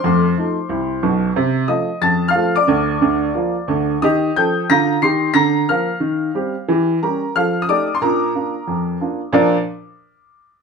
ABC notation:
X:1
M:4/4
L:1/16
Q:"Swing" 1/4=180
K:Bb
V:1 name="Upright piano"
[cc']12- [cc']2 z2 | z4 [ee']4 [aa']3 [ff']3 [dd']2- | [dd']12- [dd']2 z2 | [ee']4 [gg']4 [bb']4 [c'c'']4 |
[bb']4 [ff']12 | z4 [Bb]4 [ff']3 e' [dd']3 c' | [Bb]12 z4 | [B,,F,DFBd]2 z12 z2 |]
V:2 name="Upright piano"
[F,,A,]4 [F,A,E]4 C,,4 [_C,,_C,]4 | C,4 [F,A,F]4 F,,4 [F,A,F]4 | [D,,D,]4 [D,,D,]4 [F,B,F]4 [D,,D,]4 | [E,G]4 [F,A]4 [D,F]4 [E,G]4 |
D,4 [F,B,B]4 E,4 [G,CG]4 | [=E,G]4 [G,^CG]4 [F,A]4 [A,_EG]4 | [B,,D]4 [B,DF]4 F,,4 [B,DF]4 | z16 |]